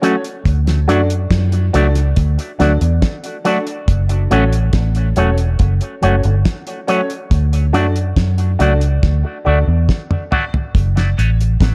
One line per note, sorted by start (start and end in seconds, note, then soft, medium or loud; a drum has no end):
0.02 0.15 F#3 medium
0.02 0.15 A3 loud
0.02 0.21 C#4 medium
0.02 0.15 C#4 medium
0.02 0.21 F#4 medium
0.02 0.15 F#4 loud
0.02 0.22 A4 medium
0.02 0.22 C#5 loud
0.02 closed hi-hat medium
0.24 closed hi-hat medium
0.45 0.88 D2 medium
0.45 kick loud
0.45 closed hi-hat medium
0.67 snare medium
0.67 closed hi-hat medium
0.88 1.27 F#2 medium
0.88 1.00 F#3 medium
0.88 1.00 A3 medium
0.88 1.07 D4 medium
0.88 1.01 D4 medium
0.88 1.07 F#4 medium
0.88 1.01 F#4 medium
0.88 1.07 A4 medium
0.88 1.08 D5 loud
0.88 closed hi-hat medium
1.10 closed hi-hat medium
1.31 1.69 F#2 medium
1.31 kick loud
1.31 snare loud
1.31 closed hi-hat loud
1.52 closed hi-hat medium
1.73 2.12 C#2 medium
1.73 1.86 F#3 medium
1.73 1.86 A3 medium
1.73 1.93 D4 medium
1.73 1.86 D4 loud
1.73 1.93 F#4 medium
1.73 1.87 F#4 medium
1.73 1.93 A4 medium
1.73 1.93 D5 loud
1.73 closed hi-hat medium
1.95 closed hi-hat medium
2.16 2.36 D2 loud
2.16 kick loud
2.16 closed hi-hat medium
2.39 closed hi-hat soft
2.59 2.79 D2 medium
2.59 2.72 F#3 medium
2.59 2.72 A3 medium
2.59 2.78 D4 medium
2.59 2.72 D4 medium
2.59 2.78 F#4 medium
2.59 2.72 F#4 medium
2.59 2.79 A4 medium
2.59 2.79 D5 loud
2.59 snare medium
2.59 closed hi-hat medium
2.81 3.00 E2 medium
2.81 2.90 A4 soft
2.81 2.89 D5 soft
2.81 closed hi-hat medium
3.02 kick loud
3.02 snare loud
3.02 closed hi-hat medium
3.24 3.33 A4 soft
3.24 3.32 D5 soft
3.24 closed hi-hat medium
3.45 3.57 F#3 medium
3.45 3.57 A3 loud
3.45 3.64 D4 medium
3.45 3.58 D4 medium
3.45 3.64 F#4 medium
3.45 3.58 F#4 loud
3.45 3.64 A4 medium
3.45 3.65 D5 medium
3.45 closed hi-hat medium
3.67 closed hi-hat medium
3.88 4.27 F#1 medium
3.88 kick loud
3.88 closed hi-hat loud
4.09 closed hi-hat medium
4.31 4.70 A1 medium
4.31 4.43 F#3 medium
4.31 4.43 A3 loud
4.31 4.50 C#4 medium
4.31 4.43 C#4 loud
4.31 4.50 F#4 medium
4.31 4.43 F#4 loud
4.31 4.51 A4 medium
4.31 4.51 C#5 loud
4.31 closed hi-hat medium
4.53 closed hi-hat medium
4.73 5.12 A1 medium
4.73 kick loud
4.73 snare loud
4.73 closed hi-hat loud
4.95 closed hi-hat medium
5.16 5.55 E1 medium
5.16 5.29 F#3 medium
5.16 5.29 A3 medium
5.16 5.36 C#4 medium
5.16 5.29 C#4 medium
5.16 5.36 F#4 medium
5.16 5.30 F#4 medium
5.16 5.36 A4 medium
5.16 5.36 C#5 medium
5.16 closed hi-hat medium
5.38 closed hi-hat medium
5.59 5.79 F#1 loud
5.59 kick loud
5.59 closed hi-hat medium
5.81 closed hi-hat soft
6.02 6.22 F#1 medium
6.02 6.14 F#3 medium
6.02 6.15 A3 medium
6.02 6.22 C#4 medium
6.02 6.15 C#4 medium
6.02 6.22 F#4 medium
6.02 6.15 F#4 medium
6.02 6.22 A4 medium
6.02 6.22 C#5 medium
6.02 closed hi-hat medium
6.23 6.44 G1 loud
6.23 6.33 A4 soft
6.23 6.33 C#5 soft
6.23 closed hi-hat soft
6.45 kick loud
6.45 snare loud
6.45 closed hi-hat loud
6.67 6.76 A4 soft
6.67 6.76 C#5 soft
6.67 closed hi-hat medium
6.87 7.00 F#3 medium
6.87 7.00 A3 medium
6.87 7.07 C#4 medium
6.87 7.00 C#4 loud
6.87 7.07 F#4 medium
6.87 7.01 F#4 medium
6.87 7.07 A4 medium
6.87 7.08 C#5 loud
6.87 closed hi-hat medium
7.10 closed hi-hat soft
7.31 7.74 D2 loud
7.31 kick loud
7.31 closed hi-hat medium
7.53 closed hi-hat medium
7.73 8.13 F#2 medium
7.73 7.86 F#3 medium
7.73 7.86 A3 medium
7.73 7.93 D4 medium
7.73 7.86 D4 loud
7.73 7.93 F#4 medium
7.73 7.86 F#4 loud
7.73 7.93 A4 medium
7.73 7.93 D5 loud
7.73 closed hi-hat medium
7.96 closed hi-hat medium
8.16 8.55 F#2 medium
8.16 kick loud
8.16 snare loud
8.16 closed hi-hat loud
8.38 closed hi-hat soft
8.59 8.99 C#2 medium
8.59 8.72 F#3 medium
8.59 8.72 A3 medium
8.59 8.79 D4 medium
8.59 8.72 D4 medium
8.59 8.79 F#4 medium
8.59 8.73 F#4 medium
8.59 8.79 A4 medium
8.59 8.79 D5 loud
8.59 closed hi-hat medium
8.81 closed hi-hat medium
9.03 9.22 D2 medium
9.03 kick loud
9.03 snare medium
9.25 muted clean electric guitar stroke soft
9.45 9.66 D2 medium
9.45 9.58 F#3 medium
9.45 9.58 A3 medium
9.45 9.64 D4 medium
9.45 9.58 D4 medium
9.45 9.65 F#4 medium
9.45 9.58 F#4 medium
9.45 9.65 A4 medium
9.45 9.65 D5 loud
9.67 9.87 E2 loud
9.67 9.76 A4 soft
9.67 9.76 D5 soft
9.89 kick loud
9.89 snare medium
10.10 10.19 A4 soft
10.10 10.19 D5 soft
10.10 mid tom medium
10.31 10.43 F#3 medium
10.31 10.44 A3 medium
10.31 10.50 D4 medium
10.31 10.44 D4 medium
10.31 10.51 F#4 medium
10.31 10.44 F#4 loud
10.31 10.51 A4 medium
10.31 10.51 D5 loud
10.31 floor tom loud
10.54 floor tom medium
10.75 11.13 F#1 medium
10.75 kick loud
10.75 closed hi-hat medium
10.97 snare medium
10.97 closed hi-hat medium
11.17 11.57 A1 medium
11.17 11.29 F#3 medium
11.17 11.30 A3 medium
11.17 11.36 C#4 medium
11.17 11.30 C#4 loud
11.17 11.37 F#4 medium
11.17 11.30 F#4 loud
11.17 11.37 A4 medium
11.17 11.37 C#5 loud
11.17 closed hi-hat medium
11.41 closed hi-hat medium
11.61 11.75 A1 medium
11.61 kick loud
11.61 snare loud
11.61 closed hi-hat loud